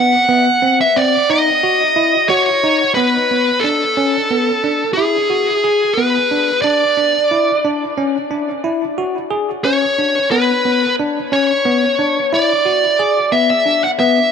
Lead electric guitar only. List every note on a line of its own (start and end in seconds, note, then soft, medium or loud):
0.00 0.80 F#5 medium
0.81 0.97 E5 medium
0.96 1.30 D5 medium
1.30 2.59 D#5 medium
2.29 2.94 C#5 medium
2.94 3.64 B4 medium
3.60 4.93 A4 medium
4.93 5.98 G#4 medium
5.94 6.61 B4 medium
6.62 7.93 D5 medium
9.64 10.31 C#5 loud
10.31 10.94 B4 medium
11.33 12.34 C#5 medium
12.34 13.36 D5 medium
13.32 13.49 E5 medium
13.50 13.84 E5 medium
13.84 13.89 F#5 medium
13.99 14.32 E5 medium